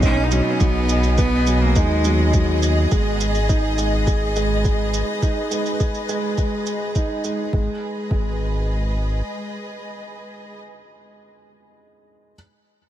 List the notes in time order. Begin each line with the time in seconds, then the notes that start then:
Already playing: B1 B2 F#3 B3 C#4 D#4 G#4
0.02 C#4 D#4, kick, shaker
0.19 D#5
0.24 D#4
0.31 F#3 C#4, shaker
0.42 B3
0.51 C#4
0.60 B1 F#3 B3, kick, shaker
0.89 shaker
1.03 shaker
1.18 B3, kick, shaker
1.47 F#3, shaker
1.61 A#3
1.76 D#2 G#3 D#4, kick, shaker
2.04 F#3, shaker
2.33 F#3, kick, shaker
2.62 shaker
2.91 G#1 G#3, kick, shaker
3.20 shaker
3.35 shaker
3.49 D#4, kick, shaker
3.77 G#3 B4, shaker
4.07 G#4, kick, shaker
4.36 G#3, shaker
4.65 G#3, kick, shaker
4.94 shaker
5.22 D#4, kick, shaker
5.51 G#3, shaker
5.66 shaker
5.80 G#4, kick, shaker
5.94 shaker
6.09 G#3, shaker
6.38 G#3, kick, shaker
6.66 shaker
6.95 D#4, kick, shaker
7.24 G#3, shaker
7.53 G#1 G#3, kick
7.62 G#4
7.71 B4
7.80 D#5
8.11 G#1 G#3, kick